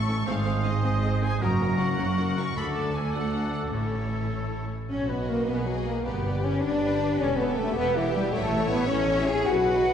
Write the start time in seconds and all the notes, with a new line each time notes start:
Already playing: A1 A2 A3 E4 A4 C#6 E6
0.07 A3 C#4 E4 E5
0.26 G#1 G#2 C4 D#4 G#4 C5 F5 D#6
0.45 C4 G#4 C5
0.64 C4 G#4 C5 D#5
0.83 G#1 G#2 C4 G#4 C5
1.03 C4 G#4 C5
1.21 C4 G#4 C5 G#5
1.40 F#1 F#2 F#3 A#3 C#4 F#4 A#4 A#5 C#6
1.59 F#3 C#4 F#4 A#4
1.78 F#3 C#4 F#4 A#4 F#5
1.98 F#1 F#2 F#3 C#4 F#4 A#4
2.17 F#3 C#4 F#4 A#4
2.36 F#3 C#4 F#4 A#4 C#6
2.55 D2 A3 D4 F#4 A4 B5 D6
2.76 A5
2.95 G#5
3.14 A3 D4 F#4 A4 F#5 D6
3.53 F#5
3.71 A1 A2 A3 C#4 E4 A4 C#5 E6
4.89 B1 C#4 F#4 C#5
5.07 B3 F#4 B4 D#5
5.28 A#3 A#4
5.45 B1 B3 G#4 B4
5.65 F#3 F#4 B4 D#5
5.85 A#3 A#4
6.04 G1 B3 G4 B4 D5
6.24 G4 B4 D5
6.42 C#4 C#5
6.61 G1 D4 B4 D5
6.81 G4 B4 D5
7.17 E1 C#4 A4 C#5
7.36 B3 G4 B4 E5
7.55 A3 A4
7.74 E1 B3 G4 B4
7.95 E3 E4 G4 B4 E5
8.14 G3 G4
8.32 A1 A3 E4 A4 C#5 E5
8.52 E4 A4 C#5 E5
8.68 B3 B4
8.72 B3
8.87 A1 C#4 C#5
9.09 E4 A4 C#5 E5
9.26 G#4 G#5
9.46 B1 F#4 B4 F#5
9.67 F#4 B4 D#5